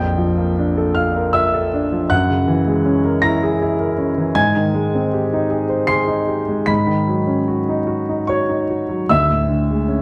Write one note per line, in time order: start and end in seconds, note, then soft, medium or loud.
0.00 2.08 A#1 medium
0.00 0.31 F2 soft
0.00 0.95 G5 medium
0.00 0.98 G6 medium
0.18 0.51 F3 soft
0.38 0.71 A#3 soft
0.58 0.90 D4 soft
0.77 1.09 A4 soft
0.95 1.28 F4 medium
0.95 1.32 F5 medium
0.95 1.34 F6 medium
1.16 1.47 A#4 medium
1.33 1.65 F4 medium
1.33 2.06 E5 medium
1.33 2.10 E6 medium
1.54 1.85 A4 soft
1.74 2.04 D4 medium
1.92 2.11 F3 soft
2.10 4.32 F#2 medium
2.10 3.20 F#5 medium
2.10 3.24 F#6 loud
2.30 2.60 C#3 soft
2.48 2.79 E3 medium
2.67 2.98 G#3 soft
2.86 3.16 C#4 medium
3.05 3.35 A#4 medium
3.22 3.54 E4 medium
3.22 3.59 A#5 medium
3.22 3.61 A#6 medium
3.43 3.73 G#4 medium
3.62 3.92 E4 medium
3.80 4.10 A#4 soft
3.98 4.28 C#4 soft
4.18 4.36 E3 soft
4.35 6.64 G#2 medium
4.35 5.86 G#5 medium
4.35 5.89 G#6 loud
4.56 4.86 D#3 soft
4.74 5.05 G#3 medium
4.95 5.25 C4 soft
5.13 5.44 G4 soft
5.33 5.64 D#4 soft
5.50 5.82 G#4 soft
5.69 6.01 C5 medium
5.87 6.20 G#4 medium
5.87 6.63 C6 medium
5.87 6.67 C7 loud
6.07 6.40 D#4 soft
6.28 6.60 G4 soft
6.48 6.68 G#3 soft
6.66 9.05 G#2 medium
6.66 8.24 B5 medium
6.66 8.27 B6 medium
6.87 7.19 D#3 soft
7.08 7.39 F#3 soft
7.27 7.59 C#4 soft
7.48 7.80 F#4 soft
7.69 8.01 D#4 soft
7.87 8.20 F#4 soft
8.09 8.41 D#4 soft
8.27 8.61 F#4 soft
8.27 9.06 C#5 medium
8.27 9.09 C#6 medium
8.49 8.81 D#4 soft
8.70 9.02 F#4 soft
8.89 9.09 F#3 soft
9.09 10.02 D2 soft
9.09 10.02 E5 medium
9.09 10.02 E6 medium
9.30 9.63 A2 soft
9.48 9.82 D3 soft
9.71 10.02 G#3 soft
9.88 10.02 C#4 soft